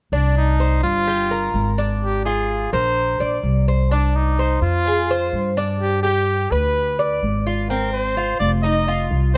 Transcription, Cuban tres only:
0.13 0.58 D4 medium
0.60 1.06 C5 medium
1.07 1.30 G4 medium
1.31 1.77 A#4 medium
1.78 2.24 D4 medium
2.26 2.71 F4 medium
2.73 3.19 A#4 medium
3.20 3.66 D5 medium
3.68 3.91 C5 medium
3.91 4.37 D4 medium
4.39 4.85 C5 medium
4.87 5.09 G#4 medium
5.11 5.56 C5 medium
5.57 6.03 D4 medium
6.04 6.50 G4 medium
6.52 6.98 B4 medium
6.99 7.45 D5 medium
7.46 7.69 F4 medium
7.70 8.16 C4 medium
8.17 8.63 F4 medium
8.64 8.87 D#4 medium
8.88 9.34 F4 medium

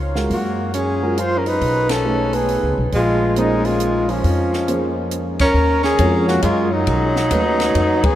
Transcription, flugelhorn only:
0.33 0.72 F#4 medium
0.77 1.22 G#4 medium
1.20 1.40 C5 medium
1.38 1.50 A#4 medium
1.49 1.92 B4 medium
1.90 2.37 A4 medium
2.36 2.79 G#4 medium
2.95 3.40 F4 medium
3.38 3.67 D#4 medium
3.66 4.12 F4 medium
4.10 5.13 C#4 medium
5.41 5.81 A#4 loud
5.84 6.25 G#4 loud
6.28 6.42 F#4 medium
6.44 6.74 F4 medium
6.73 8.06 D#4 loud
8.05 8.15 G#4 loud

